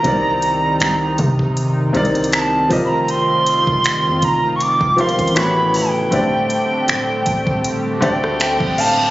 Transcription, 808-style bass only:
X:1
M:4/4
L:1/16
Q:"Swing 16ths" 1/4=79
K:Dphr
V:1 name="808-style bass" clef=bass
C,,4 C,,2 C,4 C,,4 F,,,2- | F,,,3 F,,,2 F,, F,,,3 F,,,2 A,,,3 z2 | D,,,2 z2 D,,,2 D,,,4 D,,3 D,,,3 |]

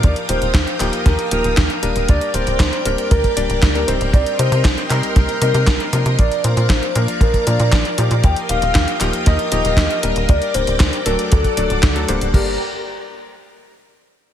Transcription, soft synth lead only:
X:1
M:4/4
L:1/8
Q:1/4=117
K:Gm
V:1 name="Soft synth lead"
d c2 z B B2 z | d c3 B3 z | d c2 z B B2 z | d c2 z B d2 z |
g f2 z e e2 z | d c2 B A3 z | G z6 z |]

